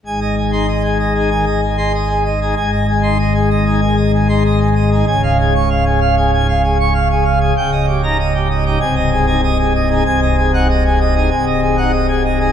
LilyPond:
<<
  \new Staff \with { instrumentName = "Pipe organ" } { \time 4/4 \key aes \major \tempo 4 = 96 << { aes''16 ees''16 aes'16 c'''16 ees''16 aes'16 ees''16 aes'16 aes''16 ees''16 aes'16 c'''16 ees''16 aes'16 ees''16 aes'16 | aes''16 ees''16 aes'16 c'''16 ees''16 aes'16 ees''16 aes'16 aes''16 ees''16 aes'16 c'''16 ees''16 aes'16 ees''16 aes'16 | aes''16 f''16 aes'16 des'''16 f''16 aes'16 f''16 aes'16 aes''16 f''16 aes'16 des'''16 f''16 aes'16 f''16 aes'16 | g''16 ees''16 g'16 bes''16 ees''16 g'16 ees''16 g'16 aes''16 ees''16 aes'16 aes''16 ees''16 aes'16 ees''16 aes'16 |
\key aes \mixolydian aes''16 ees''16 aes'16 ges''16 ees''16 aes'16 ees''16 aes'16 aes''16 ees''16 aes'16 ges''16 ees''16 aes'16 ees''16 aes'16 | } \\ { aes,8. ees'16 r8. ees'16 ees16 r8 ees'16 r8. ees'16 | aes,8. ees'16 r8. ees'16 ees16 r8 ees'16 r8. ees'16 | des,2 aes,16 r4. r16 | des,8. ees'16 r8. ees'16 c,8. ees'16 r8. ees'16 |
c,8. ees'16 r8. ees'16 c,8. ees'16 r8. ees'16 | } >> }
  \new Staff \with { instrumentName = "Pipe organ" } { \clef bass \time 4/4 \key aes \major aes,,1 | aes,,1 | des,,1 | des,,2 c,,2 |
\key aes \mixolydian c,,2 c,,2 | }
>>